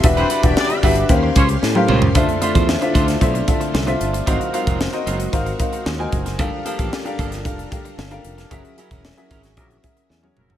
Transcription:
<<
  \new Staff \with { instrumentName = "Grand piano" } { \time 4/4 \key g \mixolydian \tempo 4 = 113 <d' fis' g' b' e''>8 r16 <d' fis' g' b' e''>8 r16 <d' fis' g' b' e''>8 <des' g' bes' c'' f''>4 r16 <des' g' bes' c'' f''>8 r16 | <d' f' a' c'' e''>8 <d' f' a' c'' e''>8 r16 <d' f' a' c'' e''>8 r16 <d' f' a' c'' e''>8 <d' f' a' c'' e''>8 r16 <d' f' a' c'' e''>8 r16 | <dis' fis' ais' bis' eis''>8 <dis' fis' ais' bis' eis''>8 r16 <dis' fis' ais' bis' dis''>8 r16 <dis' fis' ais' bis' eis''>8 <dis' fis' ais' bis' eis''>8 r16 <dis' fis' ais' bis' gis''>8 r16 | <d' g' a' bes' f''>8 <d' g' a' bes' f''>8 r16 <d' g' a' bes' f''>8 r16 <d' g' a' bes' f''>8 <d' g' a' bes' f''>8 r16 <d' g' a' bes' f''>8 r16 |
<cis' fis' gis' ais' e''>8 <cis' fis' gis' ais' e''>8 r16 <cis' fis' gis' ais' e''>8 r16 <cis' fis' gis' ais' e''>8 <cis' fis' gis' ais' e''>8 r16 <cis' fis' gis' ais' cis''>8 r16 | }
  \new Staff \with { instrumentName = "String machine" } { \time 4/4 \key g \mixolydian <g' d'' e'' b''>2 <des' g' f'' c'''>2 | <d a c' e' f'>1 | <gis fis'>1 | <g d' f' a' bes'>1 |
<fis cis' e' gis' ais'>1 | }
  \new Staff \with { instrumentName = "Horn section" } { \time 4/4 \key g \mixolydian r16 <c' c''>16 r16 <d' d''>16 <d' d''>8 r4 <des' des''>16 r4 r16 | r1 | r1 | r1 |
r2 <fis ais e' ais'>16 r4 r16 <fis ais e' ais'>8 | }
  \new Staff \with { instrumentName = "Clean electric guitar" } { \time 4/4 \key g \mixolydian r16 <g d' e' b'>16 <g d' e' b'>16 r8. <g d' e' b'>16 r8. <g des' f' c''>16 r8. <g des' f' c''>16 r16 | <a d' f' c''>16 r16 <a d' f' c''>16 <a d' f' c''>16 r8 <a d' f' c''>16 r2 r16 | <fis bis eis' ais'>16 r16 <fis bis eis' ais'>16 <fis bis eis' ais'>16 r8 <fis bis eis' ais'>16 r2 r16 | <f bes d' a'>16 r16 <f bes d' a'>16 <f bes d' a'>16 r8 <f bes d' a'>16 r2 r16 |
<fis cis' e' ais'>16 r16 <fis cis' e' ais'>16 <fis cis' e' ais'>16 r8 <fis cis' e' ais'>16 r2 r16 | }
  \new Staff \with { instrumentName = "Fingered electric bass" } { \clef bass \time 4/4 \key g \mixolydian e,,8 r16 e,,16 r8 g,,8 ees,8 des,8 a,8 des,8 | d,16 r8 e,8 r16 d,8 b,,8 r8 c,8 g,,8 | gis,,16 r8 eis,,8 r16 fis,,8 gis,,8 r8 dis,8 fis,,8 | g,,16 r8 a,,16 r8 g,,8 f,,8 r8 g,,8 f,,8 |
fis,,16 r8 e,,8 r16 gis,,8 ais,,8 r8 e,8 f,,8 | }
  \new DrumStaff \with { instrumentName = "Drums" } \drummode { \time 4/4 <hh bd>16 hh16 hh16 <hh bd>16 sn16 hh16 <hho bd>16 hh16 <hh bd>8 <hh bd>16 hh16 sn16 tommh16 toml16 tomfh16 | <hh bd>16 hh16 hh16 <hh bd>16 sn16 hh16 <hh bd>16 <hh sn>16 <hh bd>16 hh16 <hh bd>16 hh16 sn16 hh16 hh16 hh16 | <hh bd>16 hh16 hh16 <hh bd>16 sn16 hh16 hh16 hh16 <hh bd>16 hh16 <hh bd>16 hh16 sn8 <hh bd>16 <hh sn>16 | <hh bd>8 hh16 <hh bd>16 sn16 hh16 <hh bd>16 <hh sn>16 <hh bd>16 hh16 <hh bd>16 hh16 sn16 hh16 hh16 <hh sn>16 |
<hh bd>16 hh16 hh16 <hh bd>16 sn16 hh16 <hh bd>16 <hh sn>16 <hh bd>16 hh16 <hh bd>16 hh16 sn16 tommh16 toml16 tomfh16 | }
>>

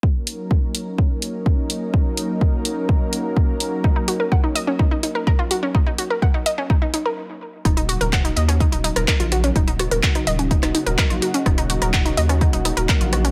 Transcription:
<<
  \new Staff \with { instrumentName = "Synth arpeggio sound" } { \time 4/4 \key ees \minor \tempo 4 = 126 r1 | r1 | ees'16 ees'16 ges'16 bes'16 ges''16 ees'16 ees''16 des'16 ees'16 ees'16 ees'16 bes'16 bes'16 f'16 ges'16 des'16 | ees'16 ees'16 ges'16 bes'16 ges''16 ees'16 ees''16 des'16 ees'16 ees'16 ees'16 bes'16 r4 |
ees'16 ees'16 ges'16 bes'16 ges''16 ees'16 ees''16 des'16 ees'16 ees'16 ees'16 bes'16 bes'16 f'16 ges'16 des'16 | ees'16 ees'16 ges'16 bes'16 ges''16 ees'16 ees''16 des'16 ees'16 ees'16 ees'16 bes'16 bes'16 f'16 ges'16 des'16 | ees'16 ees'16 ges'16 bes'16 ges''16 ees'16 ees''16 des'16 ees'16 ees'16 ees'16 bes'16 bes'16 f'16 ges'16 des'16 | }
  \new Staff \with { instrumentName = "Analog synth pad" } { \time 4/4 \key ees \minor <ges bes des' ees' bes'>1~ | <ges bes des' ees' bes'>1~ | <ges bes des' ees' bes'>1~ | <ges bes des' ees' bes'>2. r4 |
<des ges bes ees' ges'>1~ | <des ges bes ees' ges'>1~ | <des ges bes ees' ges'>1 | }
  \new Staff \with { instrumentName = "Analog synth bass" } { \clef bass \time 4/4 \key ees \minor r1 | r1 | r1 | r1 |
ees,,8. ees,,8. ees,8. ees,,8 ees,,16 r16 bes,,8. | ees,,8. ees,,16 r8 ees,,8. ees,,16 r16 ees,,16 r16 bes,,16 r8 | ees,,8. ees,,8. ees,8. ees,,8 ees,,16 r16 bes,,8. | }
  \new DrumStaff \with { instrumentName = "Drums" } \drummode { \time 4/4 bd8 hho8 bd8 hho8 bd8 hho8 bd8 hho8 | bd8 hho8 bd8 hho8 bd8 hho8 bd8 hho8 | bd8 hho8 bd8 hho8 bd8 hho8 bd8 hho8 | bd8 hho8 bd8 hho8 bd8 hho8 r4 |
<hh bd ss>16 hh16 hho16 hh16 <hc hh bd ss>16 hh16 hho16 <hh ss>16 <hh bd>16 hh16 hho16 <hh ss>16 <hc hh bd>16 hh16 <hho ss>16 hh16 | <hh bd>16 hh16 <hho ss>16 hh16 <hc hh bd>16 <hh ss>16 hho16 hh16 <hh bd>16 <hc hh ss>16 hho16 hh16 <hc hh bd ss>16 hh16 hho16 hh16 | <hh bd ss>16 hh16 hho16 <hh ss>16 <hc hh bd>16 hh16 hho16 <hh ss>16 <hh bd>16 hh16 <hho ss>16 hh16 <hc hh bd>16 hh16 <hho ss>16 hh16 | }
>>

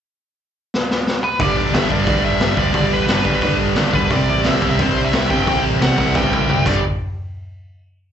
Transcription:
<<
  \new Staff \with { instrumentName = "Lead electric guitar" } { \time 4/4 \key g \major \tempo 4 = 177 r2. r8 b'8 | d''8 d''8 e''8 d''4 e''4 d''8~ | d''8 b'2 r4 b'8 | d''8 d''8 \tuplet 3/2 { e''4 e''8 } c''8. e''8. g''8~ |
g''8 r8 fis''4 g''4. d''8 | r1 | }
  \new Staff \with { instrumentName = "Distorted electric guitar" } { \clef bass \time 4/4 \key g \major r1 | <g, d g b d'>4 <g, d g b d'>8 <g, d g b d'>8 <g, d g b d'>4 <g, d g b d'>8 <g, d g b d'>8 | <g, d g b d'>4 <g, d g b d'>8 <g, d g b d'>8 <g, d g b d'>4 <g, d g b d'>8 <g, d g b d'>8 | <c g c' e'>4 <c g c' e'>8 <c g c' e'>8 <c g c' e'>4 <c g c' e'>8 <c g c' e'>8 |
<c g c' e'>4 <c g c' e'>8 <c g c' e'>8 <c g c' e'>4 <c g c' e'>8 <g, d g b d' g'>8 | r1 | }
  \new Staff \with { instrumentName = "Distorted electric guitar" } { \clef bass \time 4/4 \key g \major r1 | <g, d g>4 <g, d g>8 <g, d g>8 <g, d g>4 <g, d g>8 <g, d g>8 | <g, d g>4 <g, d g>8 <g, d g>8 <g, d g>4 <g, d g>8 <g, d g>8 | <c g c'>4 <c g c'>8 <c g c'>8 <c g c'>4 <c g c'>8 <c g c'>8 |
<c g c'>4 <c g c'>8 <c g c'>8 <c g c'>4 <c g c'>8 <g, d g>8 | r1 | }
  \new Staff \with { instrumentName = "Picked electric bass" } { \clef bass \time 4/4 \key g \major r1 | g,,8 e,,8 g,,8 g,,8 d,8 g,,8 g,,8 d,8 | g,,8 e,,8 g,,8 g,,8 d,8 g,,8 g,,8 d,8 | c,8 a,,8 c,8 c,8 g,8 c,8 c,8 g,8 |
c,8 a,,8 c,8 c,8 g,8 c,8 c,8 g,,8 | r1 | }
  \new DrumStaff \with { instrumentName = "Drums" } \drummode { \time 4/4 r4 r4 sn8 sn8 sn4 | <hho bd>4 <hho sn>8 bd8 <hho bd>4 <hho sn>8 bd8 | <hho bd>4 <hho sn>8 bd8 <hho bd>4 <hho sn>8 bd8 | <hho bd>4 <hho sn>8 bd8 <hho bd>4 <hho sn>8 bd8 |
<hho bd>4 <hho sn>8 bd8 <bd sn>8 tommh8 toml8 <cymc bd>8 | r4 r4 r4 r4 | }
>>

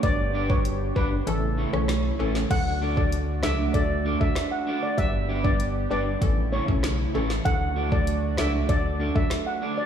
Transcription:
<<
  \new Staff \with { instrumentName = "Steel pan" } { \time 4/4 \key d \major \tempo 4 = 97 d''8 r16 cis''16 r8 b'16 r16 a'16 r8 cis''16 r4 | fis''16 r8 d''16 r8 e''16 r16 d''16 r8 e''16 r16 fis''16 r16 d''16 | e''8 r16 d''16 r8 d''16 r8. cis''16 r4 r16 | fis''16 r8 d''16 r8 e''16 r16 d''16 r8 e''16 r16 fis''16 r16 d''16 | }
  \new Staff \with { instrumentName = "Clean electric guitar" } { \time 4/4 \key d \major r8 <d' g' b' d''>8 r8 <d' g' b' d''>8 r8 <cis' e' a' cis''>8 r8 <cis' e' a' cis''>8 | r8 <d' fis' a' d''>8 r8 <d' fis' a' d''>8 r8 <d' fis' a' d''>8 r8 <d' fis' a' d''>8 | r8 <d' g' b' d''>8 r8 <d' g' b' d''>8 r8 <cis' e' a' cis''>8 r8 <cis' e' a' cis''>8 | r8 <d' fis' a' d''>8 r8 <d' fis' a' d''>8 r8 <d' fis' a' d''>8 r8 <d' fis' a' d''>8 | }
  \new Staff \with { instrumentName = "Analog synth pad" } { \time 4/4 \key d \major << { <b g'>2 <a e'>2 | <a fis'>1 | <b g'>2 <a e'>2 | <a fis'>1 | } \\ { d'2 cis2 | d'1~ | d'2 cis2 | d'1 | } >> }
  \new Staff \with { instrumentName = "Synth pluck" } { \time 4/4 \key d \major <g d' b'>8. <g d' b'>16 r8 <g d' b'>16 r16 <e cis' a'>16 r8 <e cis' a'>16 r8 <e cis' a'>16 r16 | <fis d' a'>16 r8 <fis d' a'>16 r8 <fis d' a'>16 r16 <fis d' a'>16 r8 <fis d' a'>16 r4 | <g d' b'>8. <g d' b'>16 r8 <g d' b'>16 r16 <e cis' a'>16 r8 <e cis' a'>16 r8 <e cis' a'>16 r16 | <fis d' a'>16 r8 <fis d' a'>16 r8 <fis d' a'>16 r16 <fis d' a'>16 r8 <fis d' a'>16 r4 | }
  \new Staff \with { instrumentName = "Sub bass" } { \clef bass \time 4/4 \key d \major g,,4. g,,8 a,,8. b,,8. a,,8 | d,4. cis,8 d,8. d,16 r4 | g,,4. g,,8 a,,8. b,,8. a,,8 | d,4. cis,8 d,8. d,16 r4 | }
  \new DrumStaff \with { instrumentName = "Drums" } \drummode { \time 4/4 <hh bd>8. bd16 hh8 bd8 hh8. ss16 <hh ss sn>8. sn16 | <cymc hh bd>8. bd16 hh8 <ss sn>8 <hh bd>8. bd16 <hh ss sn>4 | <hh bd>8. bd16 hh4 <hh bd>8. bd16 <hh ss sn>8. sn16 | <hh bd>8. bd16 hh8 <ss sn>8 <hh bd>8. bd16 <hh ss sn>4 | }
>>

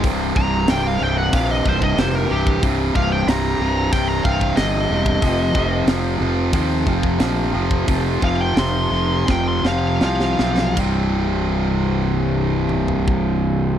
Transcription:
<<
  \new Staff \with { instrumentName = "Lead electric guitar" } { \time 4/4 \key c \minor \tempo 4 = 91 r8 bes''8 g''16 f''16 g''16 fis''16 f''16 ees''16 c''16 ees''16 c''16 bes'16 g'8 | r8 f''16 g''16 bes''4 g''16 bes''16 f''8 ees''4~ | ees''4 r2. | r8 f''16 g''16 c'''4 g''16 c'''16 f''8 f''4 |
r1 | }
  \new Staff \with { instrumentName = "Distorted electric guitar" } { \clef bass \time 4/4 \key c \minor <c, g, c>8 <c, g, c>8 <c, g, c>8 <c, g, c>8 <c, g, c>8 <c, g, c>8 <c, g, c>8 <c, g, c>8 | <c, g, c>8 <c, g, c>8 <c, g, c>8 <c, g, c>8 <c, g, c>8 <c, g, c>8 <c, g, c>8 <c, g, c>8 | <f, c f>8 <f, c f>8 <f, c f>8 <f, c f>8 <f, c f>8 <f, c f>8 <f, c f>8 <f, c f>8 | <f, c f>8 <f, c f>8 <f, c f>8 <f, c f>8 <f, c f>8 <f, c f>8 <f, c f>8 <f, c f>8 |
<c, g, c>1 | }
  \new Staff \with { instrumentName = "Fingered electric bass" } { \clef bass \time 4/4 \key c \minor c,,8 c,,8 c,,8 c,,8 bes,,8 c,,8 f,,8 c,,8 | c,,8 c,,8 c,,8 c,,8 c,,8 c,,8 g,,8 e,,8 | f,,8 f,,8 f,,8 f,,8 ees,8 f,,8 bes,,8 f,,8 | f,,8 f,,8 f,,8 f,,8 f,,8 f,,8 c,8 b,,8 |
c,,1 | }
  \new DrumStaff \with { instrumentName = "Drums" } \drummode { \time 4/4 <hho bd>8 bd8 <hho sn>4 <hho bd>8 bd16 bd16 <hho sn>8. bd16 | <hho bd>8 bd8 <hho sn>4 <hho bd>8 bd16 bd16 <hho sn>8. bd16 | <hho bd>8 bd8 <hho sn>4 <hho bd>8 bd16 bd16 <hho sn>8. bd16 | <hho bd>8 bd8 <hho sn>4 <bd sn>8 sn8 sn16 sn16 sn16 sn16 |
<cymc bd>4 r4 r8 toml16 tomfh16 bd4 | }
>>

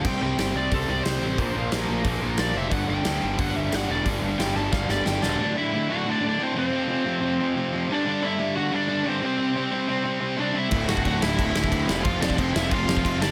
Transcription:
<<
  \new Staff \with { instrumentName = "Overdriven electric guitar" } { \time 4/4 \key g \major \tempo 4 = 180 << { g''8 g''8 g''8 d''8 a'8 d''8 c''4~ | c''4 r2 d''8 e''8 | fis''8 g''4. fis''8 e''8 fis''8 d''8 | r4 g''8 a''8 f''8 d''8 g''8 fis''8 |
r1 | r1 | r1 | r1 |
r1 | r1 | } \\ { r1 | r1 | r1 | r2. r8 <d' d''>8~ |
<d' d''>8 <e' e''>4 <fis' fis''>8 <d' d''>8 <d' d''>8 <c' c''>8 <c' c''>8~ | <c' c''>2.~ <c' c''>8 <d' d''>8~ | <d' d''>8 <e' e''>4 <fis' fis''>8 <d' d''>4 <c' c''>8 <c' c''>8~ | <c' c''>2. <d' d''>8 <e' e''>8~ |
<e' e''>8 <fis' fis''>8 <fis' fis''>8 <e' e''>2~ <e' e''>8 | <f' f''>8 <d' d''>8 <c' c''>8 <e' e''>8 <f' f''>4. <d' d''>8 | } >> }
  \new Staff \with { instrumentName = "Distorted electric guitar" } { \clef bass \time 4/4 \key g \major <c g c'>8 <c g c'>8 <c g c'>8 <c g c'>8 <c g c'>8 <c g c'>8 <c g c'>8 <c g c'>8 | <bes, f bes>8 <bes, f bes>8 <bes, f bes>8 <bes, f bes>8 <bes, f bes>8 <bes, f bes>8 <bes, f bes>8 <bes, f bes>8 | <g, d g>8 <g, d g>8 <g, d g>8 <g, d g>8 <g, d g>8 <g, d g>8 <g, d g>8 <g, d g>8 | <g, d g>8 <g, d g>8 <g, d g>8 <g, d g>8 <g, d g>8 <g, d g>8 <g, d g>8 <g, d g>8 |
<d, a, d>8 <d, a, d>8 <d, a, d>8 <d, a, d>8 <d, a, d>8 <d, a, d>8 <d, a, d>8 <f, c f>8 | <f, c f>8 <f, c f>8 <f, c f>8 <f, c f>8 <f, c f>8 <f, c f>8 <f, c f>8 <g, d g>8 | <g, d g>8 <g, d g>8 <g, d g>8 <g, d g>8 <g, d g>8 <g, d g>8 <g, d g>8 <c g c'>8 | <c g c'>8 <c g c'>8 <c g c'>8 <c g c'>8 <c g c'>8 <c g c'>8 <c g c'>8 <c g c'>8 |
<d, a, d>8 <d, a, d>8 <d, a, d>8 <d, a, d>8 <d, a, d>8 <d, a, d>8 <d, a, d>8 <f, c f>8 | <f, c f>8 <f, c f>8 <f, c f>8 <f, c f>8 <f, c f>8 <f, c f>8 <f, c f>8 <g, d g>8 | }
  \new Staff \with { instrumentName = "Distorted electric guitar" } { \clef bass \time 4/4 \key g \major <c g c'>8 <c g c'>8 <c g c'>8 <c g c'>8 <c g c'>8 <c g c'>8 <c g c'>8 <c g c'>8 | <bes, f bes>8 <bes, f bes>8 <bes, f bes>8 <bes, f bes>8 <bes, f bes>8 <bes, f bes>8 <bes, f bes>8 <bes, f bes>8 | <g, d g>8 <g, d g>8 <g, d g>8 <g, d g>8 <g, d g>8 <g, d g>8 <g, d g>8 <g, d g>8 | <g, d g>8 <g, d g>8 <g, d g>8 <g, d g>8 <g, d g>8 <g, d g>8 <g, d g>8 <g, d g>8 |
r1 | r1 | r1 | r1 |
<d, a, d>8 <d, a, d>8 <d, a, d>8 <d, a, d>8 <d, a, d>8 <d, a, d>8 <d, a, d>8 <f, c f>8 | <f, c f>8 <f, c f>8 <f, c f>8 <f, c f>8 <f, c f>8 <f, c f>8 <f, c f>8 <g, d g>8 | }
  \new Staff \with { instrumentName = "Picked electric bass" } { \clef bass \time 4/4 \key g \major c,8 c,8 g,,8 c,8 c,8 c,8 c,8 a,,8 | bes,,8 bes,,8 bes,,8 bes,,8 bes,,8 bes,,8 bes,,8 f,,8 | g,,8 g,,8 d,8 g,,8 g,,8 g,,8 g,,8 e,,8 | g,,8 g,,8 g,,8 g,,8 g,,8 g,,8 g,,8 e,,8 |
r1 | r1 | r1 | r1 |
d,,8 d,,8 d,,8 d,,8 d,,8 d,,8 d,8 f,,8 | f,,8 f,,8 f,,8 f,,8 f,,8 f,,8 f,,8 g,,8 | }
  \new DrumStaff \with { instrumentName = "Drums" } \drummode { \time 4/4 <cymc bd>4 <hho sn>4 <hho bd>4 <hho sn>4 | <hho bd>4 <hho sn>4 <hho bd>4 <hho sn>4 | <hho bd>4 <hho sn>4 <hho bd>4 <hho sn>4 | <hho bd>4 <hho sn>4 <bd sn>8 sn8 sn8 sn8 |
r4 r4 r4 r4 | r4 r4 r4 r4 | r4 r4 r4 r4 | r4 r4 r4 r4 |
<cymc bd>8 sn16 bd16 <cymc bd>8 sn8 <cymc bd>8 sn16 bd16 <cymc bd>8 sn8 | <cymc bd>8 sn16 bd16 <cymc bd>8 sn8 <cymc bd>8 sn16 bd16 <cymc bd>8 sn8 | }
>>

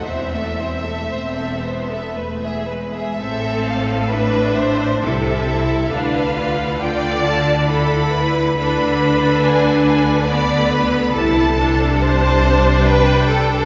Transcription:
<<
  \new Staff \with { instrumentName = "Violin section" } { \time 3/4 \key a \minor \tempo 4 = 68 e''2~ e''8 r8 | e''8 f''8 e''4 e''4 | f''4 g''8 a''8 b''4 | b''4 gis''8 gis''8 b''4 |
a''4 a''4 g''4 | }
  \new Staff \with { instrumentName = "Violin section" } { \time 3/4 \key a \minor c''16 <a' e''>16 c''16 <a' e''>16 c''16 <a' e''>16 c''16 <a' e''>16 b'16 <gis' e''>16 b'16 <gis' e''>16 | a'4 b'8 c''8 a'4 | b'4 d''4 a'8 b'8 | b'2 d''8 b'8 |
a'4 c''4 b'8 a'8 | }
  \new Staff \with { instrumentName = "Viola section" } { \time 3/4 \key a \minor <c' e'>16 <a c'>16 <c' e'>16 <a c'>16 c'8 b8 a8 gis8 | c'4 d'4 e'8 e'8 | d'8 f'8 f'4 e'4 | d'2 b4 |
e'8 d'2~ d'8 | }
  \new Staff \with { instrumentName = "Cello section" } { \clef bass \time 3/4 \key a \minor e,4 e,4 e,4 | a,2 c4 | d2. | d2. |
c2. | }
  \new Staff \with { instrumentName = "Double bass section" } { \clef bass \time 3/4 \key a \minor e,,4 e,,4 e,,4 | a,,2 c,4 | d,2. | d,2. |
c,2. | }
>>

